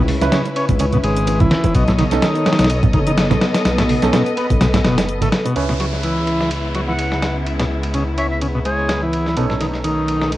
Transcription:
Already playing: detuned saw bass C#2, string section C#3 C#4 E4 B4
0.08 open hi-hat, high conga
0.21 detuned saw bass C#2, grand piano C#4 E4 B4, snare, closed hi-hat
0.32 transistor combo organ C#3, snare, closed hi-hat, ride
0.45 closed hi-hat, high bongo
0.56 transistor combo organ C#4, ride
0.69 detuned saw bass C#2, kick, closed hi-hat, low conga
0.79 transistor combo organ C#3, closed hi-hat, ride, high bongo
0.92 transistor combo organ B2, closed hi-hat, low conga
1.03 detuned saw bass G#1, transistor combo organ G#3, ride
1.16 closed hi-hat
1.27 closed hi-hat, ride, high bongo
1.40 detuned saw bass C#2, transistor combo organ E3, kick, closed hi-hat, high conga, low conga
1.51 snare, ride
1.64 kick, closed hi-hat, high bongo
1.75 detuned saw bass B1, transistor combo organ B2, string section B3 A4 C#5 D#5, kick, closed hi-hat, ride
1.88 transistor combo organ A2, snare, closed hi-hat
1.99 transistor combo organ D#3, snare, ride, high conga
2.11 detuned saw bass B1, grand piano C#4 D#4 A4, snare, closed hi-hat, high bongo
2.22 transistor combo organ D#3, snare, closed hi-hat, ride
2.35 closed hi-hat
2.46 snare, ride, high bongo
2.53 snare, ride
2.59 detuned saw bass B1, snare, closed hi-hat, ride
2.64 snare, ride
2.70 closed hi-hat, ride
2.83 kick, closed hi-hat, low conga
2.93 detuned saw bass F#1, transistor combo organ D#3, kick, ride, high bongo
3.07 transistor combo organ D#3, closed hi-hat
3.18 snare, closed hi-hat, ride
3.30 detuned saw bass B1, snare, closed hi-hat, high bongo, high conga, low conga
3.41 snare, ride
3.54 snare, closed hi-hat, ride
3.65 detuned saw bass B1, string section B4, snare, closed hi-hat, ride
3.78 transistor combo organ A2, snare, closed hi-hat, ride, high bongo
3.89 open hi-hat, high conga
4.02 detuned saw bass B1, grand piano C#4 D#4 A4, snare, closed hi-hat
4.13 transistor combo organ B2, snare, closed hi-hat, ride, high bongo
4.26 closed hi-hat
4.37 transistor combo organ B3, ride
4.50 detuned saw bass B1, kick, closed hi-hat, low conga
4.61 transistor combo organ B2, snare, closed hi-hat, ride, high bongo
4.73 transistor combo organ A2, snare, closed hi-hat, ride, low conga
4.84 detuned saw bass F#1, transistor combo organ B2, snare, ride
4.98 snare, closed hi-hat, ride, high bongo
5.09 closed hi-hat
5.21 detuned saw bass A1, transistor combo organ A3, closed hi-hat, ride, high conga, low conga
5.32 snare, ride
5.45 transistor combo organ B2, closed hi-hat, high bongo
5.55 detuned saw bass C#2, string section C#3 G#3 B3 E4, transistor combo organ C#3, grand piano C#4 E4 B4, ride, downlifter
5.69 transistor combo organ B2, snare
5.80 transistor combo organ F#3, snare, ride
5.93 snare
6.04 transistor combo organ E3, ride
6.27 ride
6.41 snare
6.51 ride
6.75 transistor combo organ F#3, ride
6.88 transistor combo organ E3, flute F#5
6.99 ride
7.12 snare
7.22 snare, ride
7.46 ride
7.60 transistor combo organ B2, snare, ride
7.83 ride
7.94 transistor combo organ C#3, ride
8.17 transistor combo organ C#4, flute E5, ride
8.30 flute E5
8.42 transistor combo organ C#3, ride
8.55 transistor combo organ B2
8.65 transistor combo organ G#3, flute C#5, ride
8.89 snare, ride
9.03 transistor combo organ E3
9.13 ride
9.26 snare
9.36 detuned saw bass B1, transistor combo organ B2, string section A3 D#4, grand piano C#4 D#4 A4, ride
9.50 transistor combo organ A2, snare
9.60 transistor combo organ D#3, snare, ride
9.73 snare
9.84 transistor combo organ D#3, ride
10.08 ride
10.21 snare
10.32 ride

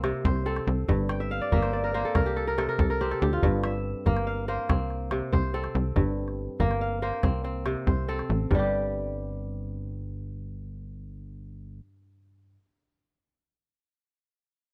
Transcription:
Already playing: analog synth bass C2, kora A#3 C4 C5 F5
0.04 kora C3, calabash click
0.25 analog synth bass C2, kora C5, calabash thump
0.36 calabash click
0.46 kora C4 A4, calabash click
0.56 calabash click
0.67 analog synth bass C2
0.88 analog synth bass G1, kora G2, calabash thump
1.09 kora G5, calabash click
1.20 kora E5
1.31 kora F5
1.41 kora D5
1.52 analog synth bass G1, kora A#3 E5, calabash thump, calabash click
1.62 kora C5, calabash click
1.73 kora D5, calabash click
1.84 kora A#4
1.94 kora A#3 C5
2.05 kora A4
2.15 analog synth bass C2, kora A#4, calabash thump, calabash click
2.26 kora G4
2.36 kora A4, calabash click
2.47 kora A#4
2.58 kora C3 A4, calabash click
2.69 kora A#4
2.79 analog synth bass C2, kora A4, calabash thump
2.90 kora A#4, calabash click
3.01 kora C4 G4, calabash click
3.11 kora A4, calabash click
3.22 analog synth bass D2, kora G4
3.33 kora F4
3.43 analog synth bass G1, kora G2, calabash thump
3.64 kora E5, calabash click
4.06 analog synth bass G1, kora A#3, calabash thump, calabash click
4.17 calabash click
4.27 kora F5, calabash click
4.48 kora A#3 C5
4.69 analog synth bass C2, kora C4, calabash thump, calabash click
4.90 calabash click
5.11 kora C3, calabash click
5.32 analog synth bass C2, kora C5, calabash thump
5.43 calabash click
5.54 kora C4 A4, calabash click
5.64 calabash click
5.75 analog synth bass C2
5.96 analog synth bass G1, kora G2, calabash thump
6.28 calabash click
6.60 analog synth bass G1, kora A#3, calabash thump
6.71 calabash click
6.81 kora F5
7.02 kora A#3 C5
7.13 calabash click
7.23 analog synth bass C2, kora C4, calabash thump, calabash click
7.44 kora C4, calabash click
7.66 kora C3, calabash click
7.77 calabash click
7.87 analog synth bass C2, kora C5, calabash thump
8.08 kora C4 A4
8.19 calabash click
8.30 analog synth bass A1
8.51 analog synth bass G1, kora G2 G3, calabash thump
8.59 kora G4

